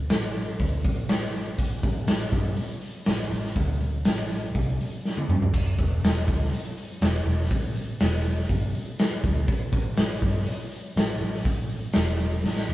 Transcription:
0.10 A1, snare, open hi-hat
0.35 open hi-hat
0.59 D2, kick, open hi-hat
0.85 A1, kick, open hi-hat
1.09 snare, open hi-hat
1.34 open hi-hat
1.59 kick, open hi-hat
1.83 A1, kick, open hi-hat
2.07 A1, snare, open hi-hat
2.32 G2, kick, open hi-hat
2.57 muted fingered electric bass stroke, open hi-hat
2.82 open hi-hat
3.06 A1, snare, open hi-hat
3.31 A1, open hi-hat
3.44 snare
3.56 D2, kick, open hi-hat
3.81 open hi-hat
4.05 A1, snare, open hi-hat
4.31 open hi-hat
4.55 C2, kick, open hi-hat
4.81 open hi-hat
5.05 snare
5.17 high tom
5.28 G2, mid tom
5.42 floor tom
5.54 kick, open hi-hat, splash
5.78 E1, kick, open hi-hat
6.03 E1, snare, open hi-hat
6.28 D2, kick, open hi-hat
6.41 snare
6.51 muted fingered electric bass stroke, open hi-hat
6.77 open hi-hat
7.01 E1, snare, open hi-hat
7.25 E1, open hi-hat
7.40 snare
7.51 A1, kick, open hi-hat
7.76 open hi-hat
8.00 E1, snare, open hi-hat
8.25 open hi-hat
8.38 snare
8.49 G1, kick, open hi-hat
8.75 open hi-hat
8.99 snare, open hi-hat
9.24 D2, kick, open hi-hat
9.48 kick, open hi-hat
9.73 A1, kick, open hi-hat
9.97 A1, snare, open hi-hat
10.22 G2, kick, open hi-hat
10.35 snare
10.47 muted fingered electric bass stroke, open hi-hat
10.72 open hi-hat
10.96 A1, snare, open hi-hat
11.21 A1, open hi-hat
11.33 snare
11.45 A1, kick, open hi-hat
11.70 open hi-hat
11.93 E1, snare, open hi-hat
12.19 open hi-hat
12.44 A1, snare
12.57 snare
12.69 E1

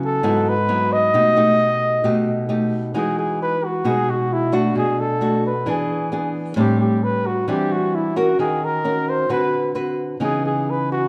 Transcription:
Already playing: C#3 F#3 B3 E4
0.05 A4
0.23 G#2 F#3 B3 E4
0.49 B4
0.69 F#3 B3 E4
0.93 D#5
1.14 B2 A3 D#4 G4
1.37 A3 D#4 G4
2.04 B2 A3 D#4 G4
2.49 A3 D#4 G4
2.94 E3 G#3 D#4 F#4 G#4
3.19 G#4
3.42 B4
3.65 F#4
3.84 B2 G#3 D#4 F#4 G#4
4.10 F#4
4.33 E4
4.52 A3 D4 F#4
4.75 B2 G#4
5.00 A4
5.21 A3 D4 F#4
5.46 B4
5.66 E3 B3 D4 G#4
6.12 B3 D4 G#4
6.56 A2 G3 C4 D4 G4
6.80 G4
7.04 B4
7.26 F#4
7.48 E3 G3 C4 D4 G4
7.72 F#4
7.95 E4
8.16 C#4 F#4 A#4
8.39 D#3 G#4
8.64 A#4
8.84 C#4 F#4 A#4
9.09 C5
9.29 D3 C4 F#4 B4
9.75 C4 F#4 B4
10.20 C#3 E3 B3 D#4 G#4
10.46 G#4
10.70 B4
10.92 F#4

